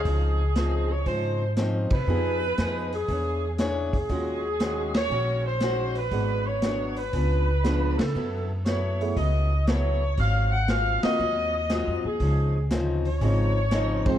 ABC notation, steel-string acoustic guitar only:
X:1
M:4/4
L:1/8
Q:"Swing" 1/4=118
K:Db
V:1 name="Steel-string acoustic guitar"
[D,F,CE] z [D,F,CE] z [D,F,CE] z [D,F,CE] z | [F,_CEA] z [F,CEA] z [=E,=D^G^c] z [E,DGc] z | [E,A,DG] z [E,A,DG] z [E,A,DG] z [E,A,DG] z | [A,,G,_C=D] z [A,,G,CD] z [_D,F,C=D] z [_D,F,C=D] z |
[G,_C_F=A] z [G,CFA] z [G,CFA] z [G,CFA] z | [A,,G,CF] z [A,,G,CF] z [A,,G,CF] z [A,,G,CF] z | [D,F,CE] z [D,F,CE] z [D,F,CE] z [D,F,CE] z |]